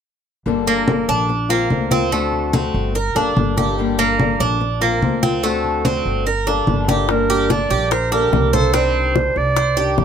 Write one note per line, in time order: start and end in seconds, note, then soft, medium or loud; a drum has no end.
0.46 1.04 G1 medium
0.46 0.87 D3 medium
0.46 0.85 G3 medium
0.46 0.87 A#3 medium
0.46 0.87 D4 medium
0.46 0.88 A4 medium
0.46 high conga soft
0.67 1.08 A#3 medium
0.67 high conga soft
0.87 1.28 G3 soft
0.87 1.28 A#3 soft
0.87 1.29 D4 soft
0.87 1.29 A4 medium
0.87 high conga medium
1.08 1.67 A#1 medium
1.08 1.49 D4 medium
1.08 high conga soft
1.29 muted steel-string acoustic guitar stroke medium
1.29 high conga soft
1.49 1.90 A#3 medium
1.49 1.69 A#3 medium
1.49 1.70 C4 medium
1.49 1.70 F4 medium
1.49 high conga soft
1.70 2.68 D2 medium
1.70 1.90 D3 soft
1.70 1.91 A#3 soft
1.70 1.91 C4 soft
1.70 1.90 F4 soft
1.70 high conga medium
1.91 2.12 A#3 medium
1.91 2.12 C4 medium
1.91 2.11 F4 medium
1.91 high conga medium
2.11 2.52 D3 medium
2.11 2.53 A3 medium
2.11 2.53 C4 medium
2.11 2.54 F#4 medium
2.11 high conga soft
2.33 high conga soft
2.53 2.94 D3 soft
2.53 2.95 A3 soft
2.53 2.94 C4 medium
2.53 2.95 C4 soft
2.53 2.95 F#4 medium
2.53 high conga medium
2.74 3.13 G1 medium
2.74 high conga soft
2.95 3.15 A#4 medium
2.95 muted steel-string acoustic guitar stroke medium
2.95 high conga soft
3.15 3.35 F#1 medium
3.15 3.35 G3 medium
3.15 3.36 A#3 medium
3.15 3.56 D4 medium
3.15 3.36 D4 medium
3.15 3.35 A4 medium
3.15 high conga soft
3.36 4.34 G1 medium
3.36 3.56 G3 soft
3.36 3.57 A#3 soft
3.36 3.56 D4 soft
3.36 3.55 A4 soft
3.36 high conga medium
3.57 3.77 G3 medium
3.57 3.78 A#3 medium
3.57 3.77 D4 medium
3.57 3.98 G4 medium
3.57 3.77 A4 medium
3.57 high conga medium
3.78 4.19 D3 medium
3.78 4.18 G3 medium
3.78 4.18 A#3 medium
3.78 4.19 D4 medium
3.78 4.20 A4 medium
3.78 high conga soft
3.99 4.39 A#3 medium
3.99 high conga soft
4.19 4.60 G3 soft
4.19 4.60 A#3 soft
4.19 4.60 D4 medium
4.19 4.61 A4 soft
4.19 high conga medium
4.40 4.98 A#1 medium
4.40 4.80 D4 medium
4.40 high conga soft
4.60 muted steel-string acoustic guitar stroke medium
4.60 high conga soft
4.81 5.22 A#3 medium
4.81 5.02 A#3 medium
4.81 5.02 C4 medium
4.81 5.01 F4 medium
4.81 high conga soft
5.02 5.99 D2 medium
5.02 5.22 D3 soft
5.02 5.22 A#3 soft
5.02 5.22 C4 soft
5.02 5.21 F4 soft
5.02 high conga medium
5.22 5.43 A#3 medium
5.22 5.43 C4 medium
5.22 5.43 C4 soft
5.22 5.43 F4 medium
5.22 high conga medium
5.43 5.83 D3 medium
5.43 5.84 A3 medium
5.43 5.85 C4 medium
5.43 5.85 F#4 medium
5.43 high conga soft
5.64 high conga soft
5.84 6.25 D3 soft
5.84 6.26 A3 soft
5.84 6.25 C4 medium
5.84 6.26 C4 soft
5.84 6.26 F#4 soft
5.84 high conga medium
6.05 6.64 G1 medium
6.05 high conga soft
6.26 6.47 A#4 medium
6.26 muted steel-string acoustic guitar stroke medium
6.26 high conga soft
6.47 6.66 G3 medium
6.47 6.67 A#3 medium
6.47 6.87 D4 medium
6.47 6.67 D4 medium
6.47 6.67 A4 medium
6.47 high conga soft
6.67 7.65 G1 medium
6.67 6.87 G3 soft
6.67 6.88 A#3 soft
6.67 6.87 D4 soft
6.67 6.87 A4 soft
6.67 high conga medium
6.88 7.08 G3 soft
6.88 7.09 A#3 medium
6.88 7.08 D4 medium
6.88 7.09 G4 medium
6.88 7.08 A4 medium
6.88 high conga medium
7.09 7.49 D3 medium
7.09 7.48 G3 medium
7.09 7.49 A#3 medium
7.09 7.50 D4 medium
7.09 7.53 A#4 medium
7.09 high bongo medium
7.09 high conga soft
7.30 7.50 G4 medium
7.30 high conga soft
7.50 7.90 G3 soft
7.50 7.90 A#3 soft
7.50 7.70 D4 medium
7.50 7.91 A4 medium
7.50 7.94 D5 medium
7.50 high bongo medium
7.50 high conga medium
7.70 8.29 A#1 medium
7.70 7.91 G4 medium
7.70 high bongo soft
7.70 high conga soft
7.91 8.11 A#4 medium
7.91 8.12 C5 medium
7.91 muted steel-string acoustic guitar stroke medium
7.91 high bongo medium
7.91 high conga soft
8.11 8.31 G3 medium
8.11 8.32 A#3 medium
8.11 8.32 D4 medium
8.11 8.52 G4 medium
8.11 8.32 A4 medium
8.11 8.56 A#4 medium
8.11 high bongo soft
8.11 high conga soft
8.32 9.30 C2 medium
8.32 8.52 G3 soft
8.32 8.53 A#3 soft
8.32 8.53 D4 soft
8.32 8.52 A4 medium
8.32 high bongo soft
8.32 low bongo medium
8.32 high conga medium
8.53 8.73 G3 medium
8.53 8.74 A#3 medium
8.53 8.74 D4 medium
8.53 8.73 A4 medium
8.53 8.77 A4 medium
8.53 8.73 C5 medium
8.53 high bongo soft
8.53 high conga medium
8.73 9.14 C3 medium
8.73 9.14 D#3 medium
8.73 9.15 G3 medium
8.73 9.14 C4 medium
8.73 9.15 D4 medium
8.73 9.15 G4 medium
8.73 9.39 C5 medium
8.73 high bongo medium
8.73 high conga soft
8.95 high conga soft
9.15 9.56 D#3 soft
9.15 9.56 G3 soft
9.15 9.56 D4 medium
9.15 9.57 G4 soft
9.15 high bongo medium
9.15 high conga medium
9.36 9.94 C2 medium
9.36 9.99 D5 medium
9.36 high bongo soft
9.36 high conga soft
9.56 9.77 C5 medium
9.56 muted steel-string acoustic guitar stroke medium
9.56 high bongo medium
9.56 high conga soft
9.77 9.97 D#3 soft
9.77 9.98 G3 medium
9.77 9.98 D4 medium
9.77 10.05 G4 medium
9.77 9.97 G4 medium
9.77 high bongo soft
9.77 high conga soft
9.98 10.05 G1 medium
9.98 10.05 D#3 soft
9.98 10.05 G3 soft
9.98 10.05 D4 soft
9.98 10.05 G4 soft
9.98 high bongo soft
9.98 low bongo medium
9.98 high conga medium